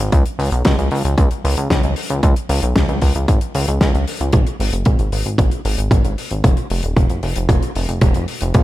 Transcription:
0.00 0.11 G#1 medium
0.12 0.24 C#2 loud
0.12 kick loud
0.12 closed hi-hat medium
0.26 closed hi-hat medium
0.39 0.50 C#2 medium
0.39 open hi-hat loud
0.52 0.63 B1 medium
0.52 closed hi-hat medium
0.65 0.76 C#2 loud
0.65 kick loud
0.65 snare loud
0.65 closed hi-hat medium
0.78 0.90 C#2 medium
0.78 closed hi-hat soft
0.91 1.03 C#2 medium
0.91 open hi-hat loud
1.05 1.16 C#2 medium
1.05 closed hi-hat medium
1.18 1.29 C#2 loud
1.18 kick loud
1.18 closed hi-hat medium
1.31 closed hi-hat medium
1.44 1.56 C#2 medium
1.44 open hi-hat loud
1.57 1.69 C#2 medium
1.57 closed hi-hat medium
1.70 1.82 C#2 loud
1.70 kick loud
1.70 snare loud
1.70 closed hi-hat medium
1.83 1.95 C#2 medium
1.83 closed hi-hat medium
1.96 open hi-hat loud
2.10 2.21 C#2 medium
2.10 closed hi-hat medium
2.23 2.34 C#2 loud
2.23 kick loud
2.23 closed hi-hat medium
2.36 closed hi-hat medium
2.49 2.61 C#2 medium
2.49 open hi-hat loud
2.62 2.74 B1 medium
2.62 closed hi-hat medium
2.76 2.87 C#2 loud
2.76 kick loud
2.76 snare loud
2.76 closed hi-hat medium
2.89 3.00 C#2 medium
2.89 closed hi-hat soft
3.02 3.13 C#2 medium
3.02 kick medium
3.02 open hi-hat loud
3.15 3.27 C#2 medium
3.15 closed hi-hat medium
3.28 3.40 G#1 loud
3.28 kick loud
3.28 closed hi-hat medium
3.41 closed hi-hat medium
3.55 3.66 C#2 medium
3.55 open hi-hat loud
3.68 3.79 C#2 medium
3.68 closed hi-hat medium
3.81 3.92 C#2 loud
3.81 kick loud
3.81 snare loud
3.81 closed hi-hat medium
3.94 4.05 C#2 medium
3.94 closed hi-hat medium
4.08 open hi-hat loud
4.20 4.32 C#2 medium
4.20 closed hi-hat medium
4.33 4.45 G#1 loud
4.33 kick loud
4.33 closed hi-hat medium
4.33 mid tom soft
4.47 closed hi-hat medium
4.60 4.71 G#1 medium
4.60 open hi-hat loud
4.73 4.84 F#1 medium
4.73 closed hi-hat medium
4.85 4.98 G#1 loud
4.85 kick loud
4.85 closed hi-hat medium
4.85 mid tom soft
4.99 5.11 G#1 medium
4.99 closed hi-hat soft
5.12 5.24 G#1 medium
5.12 open hi-hat loud
5.26 5.37 G#1 medium
5.26 closed hi-hat medium
5.38 5.50 G#1 loud
5.38 kick loud
5.38 closed hi-hat medium
5.38 mid tom medium
5.51 closed hi-hat medium
5.65 5.76 G#1 medium
5.65 open hi-hat loud
5.78 5.90 G#1 medium
5.78 closed hi-hat medium
5.91 6.03 G#1 loud
5.91 kick loud
5.91 closed hi-hat medium
5.91 mid tom medium
6.04 6.16 G#1 medium
6.04 closed hi-hat medium
6.18 open hi-hat loud
6.31 6.42 G#1 medium
6.31 closed hi-hat medium
6.44 6.55 F1 loud
6.44 kick loud
6.44 closed hi-hat medium
6.44 mid tom medium
6.57 closed hi-hat medium
6.70 6.82 F1 medium
6.70 open hi-hat loud
6.83 6.95 D#1 medium
6.83 closed hi-hat medium
6.96 7.08 F1 loud
6.96 kick loud
6.96 closed hi-hat medium
6.96 mid tom medium
7.10 7.21 F1 medium
7.10 closed hi-hat soft
7.23 7.34 F1 medium
7.23 open hi-hat loud
7.36 7.48 F1 medium
7.36 closed hi-hat medium
7.49 7.61 F1 loud
7.49 kick loud
7.49 closed hi-hat medium
7.49 mid tom medium
7.63 closed hi-hat medium
7.75 7.87 F1 loud
7.75 open hi-hat loud
7.89 8.00 F1 medium
7.89 closed hi-hat medium
8.01 8.13 F1 loud
8.01 kick loud
8.01 closed hi-hat medium
8.01 mid tom medium
8.14 8.26 F1 medium
8.14 closed hi-hat medium
8.28 open hi-hat loud
8.41 8.53 F1 medium
8.41 closed hi-hat medium
8.54 8.63 A#1 loud
8.54 kick loud
8.54 closed hi-hat medium
8.54 mid tom medium

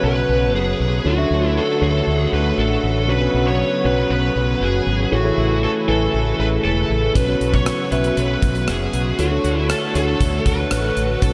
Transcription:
0.00 0.22 B1 medium
0.00 1.03 C#3 medium
0.00 1.03 F#3 medium
0.00 1.03 B3 medium
0.00 1.07 C#4 medium
0.00 1.03 F#4 medium
0.00 1.05 F#4 medium
0.00 1.07 B4 medium
0.00 1.06 C#5 medium
0.05 0.52 B4 medium
0.29 0.55 B1 medium
0.55 0.73 F#1 medium
0.55 1.07 G#4 medium
0.80 0.98 B1 medium
1.04 1.24 D2 medium
1.04 3.07 D3 medium
1.04 3.07 A3 medium
1.04 1.13 D4 medium
1.04 1.14 F#4 medium
1.04 5.08 F#4 medium
1.04 1.58 F#4 medium
1.04 1.14 A4 medium
1.04 3.07 C#5 medium
1.04 1.14 C#5 medium
1.17 1.60 D4 medium
1.17 1.60 F#4 medium
1.17 1.60 A4 medium
1.17 1.61 E5 medium
1.31 1.58 D2 medium
1.57 1.82 A4 medium
1.81 2.00 D2 medium
1.81 2.49 D4 medium
1.81 2.49 F#4 medium
1.81 2.50 A4 medium
1.81 2.17 A4 medium
1.81 2.50 C#5 medium
2.07 2.25 D2 medium
2.17 2.30 G#4 medium
2.33 2.51 D2 medium
2.33 2.59 B4 medium
2.58 2.76 A1 medium
2.58 3.10 A4 medium
2.83 3.09 A1 medium
3.08 3.27 B1 medium
3.08 9.15 C#3 medium
3.08 5.10 F#3 medium
3.08 5.10 B3 medium
3.08 3.17 C#4 medium
3.08 3.17 F#4 medium
3.08 3.17 B4 medium
3.08 3.47 B4 medium
3.08 3.17 C#5 medium
3.21 3.64 C#4 medium
3.21 3.64 F#4 medium
3.21 3.64 B4 medium
3.21 3.64 C#5 medium
3.34 3.62 B1 medium
3.48 3.86 C#5 medium
3.84 4.03 B1 medium
3.84 4.53 C#4 medium
3.84 4.53 F#4 medium
3.84 4.53 B4 medium
3.84 4.10 B4 medium
3.84 4.53 C#5 medium
4.10 4.29 B1 medium
4.10 4.63 B4 medium
4.36 4.54 B1 medium
4.61 4.79 F#1 medium
4.61 5.09 G#4 medium
4.87 5.05 G#1 medium
5.11 5.30 A1 medium
5.11 7.13 E3 medium
5.11 7.13 A3 medium
5.11 5.20 E4 medium
5.11 7.13 E4 medium
5.11 5.63 F#4 medium
5.11 5.20 G#4 medium
5.11 5.21 A4 medium
5.11 5.21 C#5 medium
5.24 5.67 E4 medium
5.24 5.67 G#4 medium
5.24 5.67 A4 medium
5.24 5.68 C#5 medium
5.38 5.65 A1 medium
5.64 5.71 A4 medium
5.88 6.07 A1 medium
5.88 6.56 E4 medium
5.88 6.57 A4 medium
5.88 6.36 A4 medium
5.88 6.57 B4 medium
5.88 6.56 G#5 medium
6.14 6.32 A1 medium
6.39 6.58 A1 medium
6.39 6.47 B4 medium
6.65 6.83 E1 medium
6.65 7.12 A4 medium
6.90 7.08 A1 medium
7.15 7.34 B1 medium
7.15 9.17 F#3 medium
7.15 9.17 B3 medium
7.15 7.24 C#4 medium
7.15 7.24 F#4 medium
7.15 11.33 F#4 medium
7.15 7.24 B4 medium
7.15 7.54 B4 medium
7.15 7.24 C#5 medium
7.15 kick loud
7.15 closed hi-hat medium
7.28 7.71 C#4 medium
7.28 7.71 F#4 medium
7.28 7.71 B4 medium
7.28 7.71 C#5 medium
7.41 7.68 B1 medium
7.41 closed hi-hat medium
7.54 7.92 C#5 medium
7.54 kick medium
7.66 cross-stick loud
7.66 closed hi-hat medium
7.91 8.10 B1 medium
7.91 8.60 C#4 medium
7.91 8.60 F#4 medium
7.91 8.60 B4 medium
7.91 8.17 B4 medium
7.91 8.60 E5 medium
7.91 closed hi-hat medium
8.04 closed hi-hat soft
8.17 8.35 B1 medium
8.17 8.70 B4 medium
8.17 closed hi-hat medium
8.42 8.69 B1 medium
8.42 kick medium
8.42 closed hi-hat medium
8.55 closed hi-hat soft
8.68 8.86 F#1 medium
8.68 9.19 G#4 medium
8.68 cross-stick loud
8.68 closed hi-hat medium
8.93 9.12 B1 medium
8.93 closed hi-hat medium
9.18 9.37 D2 medium
9.18 11.20 D3 medium
9.18 11.20 A3 medium
9.18 9.27 D4 medium
9.18 9.27 F#4 medium
9.18 9.67 F#4 medium
9.18 9.28 A4 medium
9.18 11.20 C#5 medium
9.18 9.28 C#5 medium
9.18 closed hi-hat medium
9.31 9.74 D4 medium
9.31 9.74 F#4 medium
9.31 9.74 A4 medium
9.31 9.74 C#5 medium
9.44 9.72 D2 medium
9.44 closed hi-hat medium
9.70 9.94 A4 medium
9.70 cross-stick loud
9.70 closed hi-hat medium
9.95 10.13 D2 medium
9.95 10.63 D4 medium
9.95 10.63 F#4 medium
9.95 10.63 A4 medium
9.95 10.43 A4 medium
9.95 10.63 C#5 medium
9.95 closed hi-hat medium
10.21 10.39 D2 medium
10.21 kick medium
10.21 closed hi-hat medium
10.46 10.64 D2 medium
10.46 11.23 B4 medium
10.46 kick medium
10.46 closed hi-hat medium
10.71 10.90 A1 medium
10.71 cross-stick medium
10.71 closed hi-hat medium
10.97 11.15 A1 medium
10.97 closed hi-hat medium
11.22 11.33 B1 medium
11.22 11.33 C#3 medium
11.22 11.33 F#3 medium
11.22 11.33 B3 medium
11.22 11.30 C#4 medium
11.22 11.31 F#4 medium
11.22 11.33 A4 medium
11.22 11.31 B4 medium
11.22 11.31 C#5 medium
11.22 kick loud
11.22 closed hi-hat medium

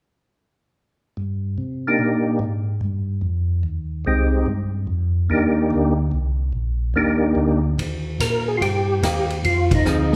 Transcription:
1.17 1.58 G2 medium
1.58 1.99 C3 medium
1.87 2.40 A#3 medium
1.87 2.40 D4 medium
1.87 2.40 D#4 soft
1.87 2.40 G4 medium
1.99 2.40 A#2 medium
2.39 2.81 G#2 medium
2.81 3.22 G2 medium
3.21 3.63 F2 medium
3.63 4.05 D#2 medium
4.05 4.46 C2 medium
4.05 4.48 G#3 soft
4.05 4.48 C4 soft
4.05 4.49 D#4 soft
4.05 4.49 G4 medium
4.46 4.87 G2 medium
4.87 5.29 F2 medium
5.30 5.70 D#2 medium
5.30 5.93 A#3 medium
5.30 5.94 D4 medium
5.30 5.94 D#4 medium
5.30 5.94 G4 medium
5.71 6.12 D2 medium
6.12 6.53 C2 medium
6.53 6.94 A#1 medium
6.94 7.35 D#2 medium
6.94 7.59 A#3 medium
6.94 7.60 D4 medium
6.94 7.60 D#4 medium
6.94 7.60 G4 medium
7.35 7.76 D2 medium
7.78 8.19 D#2 medium
7.78 kick soft
7.78 ride medium
8.20 8.60 A#2 medium
8.20 8.49 A#4 medium
8.20 kick soft
8.20 hi-hat pedal medium
8.20 ride medium
8.48 8.56 G#4 loud
8.57 9.01 G2 medium
8.57 8.62 F4 medium
8.57 kick soft
8.62 9.26 G4 loud
8.62 ride medium
9.03 9.43 D#2 medium
9.03 9.28 A#3 medium
9.03 9.28 D#4 medium
9.03 9.28 G4 medium
9.03 kick soft
9.03 hi-hat pedal medium
9.03 ride medium
9.30 ride soft
9.44 9.84 F2 medium
9.44 9.73 F4 loud
9.44 kick soft
9.44 ride medium
9.71 10.14 D#4 medium
9.71 kick medium
9.71 ride medium
9.85 10.16 D2 medium
9.85 10.16 F3 medium
9.85 10.16 C4 medium
9.85 10.16 D#4 medium
9.85 10.16 G#4 medium
9.85 hi-hat pedal medium

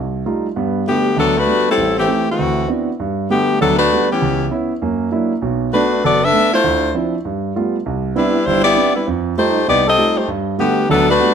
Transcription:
0.00 0.22 C2 medium
0.26 0.45 G3 soft
0.26 0.46 A3 soft
0.26 0.46 D#4 soft
0.26 0.46 F4 soft
0.56 0.82 G2 medium
0.56 0.82 B3 medium
0.87 1.15 D3 medium
0.87 1.06 G3 soft
0.87 1.07 A3 soft
0.87 1.15 A3 medium
0.87 1.07 B3 soft
0.87 1.15 B3 medium
0.87 1.07 F#4 medium
0.87 1.16 G4 medium
1.16 1.43 D2 medium
1.16 1.35 F#3 medium
1.16 1.35 B3 medium
1.16 1.35 D4 medium
1.16 1.35 A4 medium
1.38 1.67 A3 medium
1.38 1.67 D4 medium
1.38 1.67 F#4 medium
1.38 1.67 B4 medium
1.46 1.67 G3 soft
1.46 1.67 A3 soft
1.46 1.67 B3 soft
1.46 1.67 F#4 soft
1.69 1.96 G3 medium
1.69 1.96 C4 medium
1.69 1.96 E4 medium
1.69 1.96 A4 medium
1.77 2.03 A1 medium
1.99 2.26 E3 medium
1.99 2.26 A3 medium
1.99 2.26 C4 medium
1.99 2.26 G4 medium
2.07 2.27 A3 soft
2.07 2.28 C4 soft
2.07 2.28 G4 soft
2.30 2.68 E3 medium
2.30 2.68 A3 medium
2.30 2.68 C4 medium
2.30 2.68 F#4 medium
2.39 2.65 D2 medium
2.68 2.88 B3 soft
2.68 2.88 C4 soft
2.68 2.88 D4 soft
2.68 2.89 E4 soft
2.68 2.89 F#4 medium
3.00 3.25 G2 medium
3.30 3.58 D3 medium
3.30 3.49 G3 soft
3.30 3.58 A3 medium
3.30 3.50 A3 soft
3.30 3.50 B3 soft
3.30 3.58 B3 medium
3.30 3.50 F#4 soft
3.30 3.58 G4 medium
3.61 3.86 D2 medium
3.61 3.86 F#3 medium
3.61 3.78 F#3 medium
3.61 3.78 B3 medium
3.61 3.77 D4 medium
3.61 3.78 A4 medium
3.78 4.06 A3 medium
3.78 4.07 D4 medium
3.78 4.07 F#4 medium
3.78 4.07 B4 medium
3.92 4.11 G3 soft
3.92 4.11 A3 soft
3.92 4.11 B3 soft
3.92 4.11 F#4 medium
4.10 4.49 E3 medium
4.10 4.49 B3 medium
4.10 4.49 C#4 medium
4.10 4.49 G4 medium
4.22 4.47 C#2 medium
4.51 4.71 B3 soft
4.51 4.71 C#4 soft
4.51 4.71 E4 medium
4.82 5.08 F#2 medium
4.82 5.08 A#3 medium
5.11 5.31 F#3 soft
5.11 5.32 A#3 soft
5.11 5.31 D4 soft
5.11 5.32 E4 medium
5.42 5.68 B1 medium
5.42 5.68 B2 medium
5.73 6.01 A3 medium
5.73 5.93 A3 soft
5.73 5.93 B3 soft
5.73 6.01 D4 medium
5.73 5.93 D4 medium
5.73 6.01 F#4 medium
5.73 6.01 B4 medium
6.04 6.30 F#1 medium
6.04 6.21 B3 medium
6.04 6.21 F#4 medium
6.04 6.21 A4 medium
6.04 6.21 D5 loud
6.24 6.53 D4 medium
6.24 6.53 A4 medium
6.24 6.53 B4 medium
6.24 6.53 E5 loud
6.33 6.53 A3 medium
6.33 6.53 B3 soft
6.33 6.53 D4 medium
6.53 6.92 A3 medium
6.53 6.92 E4 medium
6.53 6.92 F4 medium
6.53 6.92 C5 medium
6.64 6.90 D2 medium
6.64 6.90 D3 medium
6.94 7.14 F3 soft
6.94 7.14 C4 soft
6.94 7.14 D4 soft
6.94 7.14 E4 medium
7.25 7.51 G2 medium
7.55 7.75 G3 soft
7.55 7.75 A3 soft
7.55 7.75 B3 soft
7.55 7.75 F4 medium
7.86 8.11 C2 medium
8.15 8.44 G3 medium
8.15 8.35 B3 soft
8.15 8.35 C4 soft
8.15 8.35 D4 soft
8.15 8.45 D4 medium
8.15 8.35 E4 medium
8.15 8.44 E4 medium
8.15 8.44 B4 medium
8.46 8.72 G1 medium
8.46 8.65 G3 medium
8.46 8.65 D4 medium
8.46 8.63 E4 medium
8.46 8.64 C5 medium
8.64 8.92 B3 medium
8.64 8.92 E4 medium
8.64 8.92 G4 medium
8.64 8.92 D5 medium
8.76 8.96 B3 soft
8.76 8.96 C4 soft
8.76 8.96 D4 soft
8.76 8.96 E4 medium
8.95 9.07 G3 medium
8.95 9.07 D4 medium
8.95 9.07 E4 medium
8.95 9.07 B4 medium
9.07 9.33 F2 medium
9.38 9.57 G3 soft
9.38 9.57 A3 soft
9.38 9.65 A3 medium
9.38 9.65 D#4 medium
9.38 9.57 D#4 soft
9.38 9.57 F4 medium
9.38 9.65 G4 medium
9.38 9.65 C5 medium
9.68 9.93 C2 medium
9.68 9.85 B3 medium
9.68 9.85 D#4 medium
9.68 9.85 G4 medium
9.68 9.85 D5 loud
9.87 10.15 C4 medium
9.87 10.15 G4 medium
9.87 10.15 A4 medium
9.87 10.15 D#5 loud
9.98 10.17 G3 soft
9.98 10.17 A3 soft
9.98 10.18 D#4 soft
9.98 10.17 F4 medium
10.16 10.28 A3 medium
10.16 10.28 D#4 medium
10.16 10.28 G4 medium
10.16 10.28 C5 medium
10.28 10.54 G2 medium
10.58 10.87 D3 medium
10.58 10.78 G3 soft
10.58 10.78 A3 soft
10.58 10.87 A3 medium
10.58 10.78 B3 soft
10.58 10.87 B3 medium
10.58 10.78 F#4 medium
10.58 10.87 G4 medium
10.89 11.15 D2 medium
10.89 11.15 F#3 medium
10.89 11.08 F#3 medium
10.89 11.08 B3 medium
10.89 11.08 D4 medium
10.89 11.08 A4 loud
11.10 11.34 A3 medium
11.10 11.34 D4 medium
11.10 11.34 F#4 medium
11.10 11.34 B4 loud
11.20 11.34 G3 soft
11.20 11.34 A3 soft
11.20 11.34 B3 soft
11.20 11.34 F#4 medium

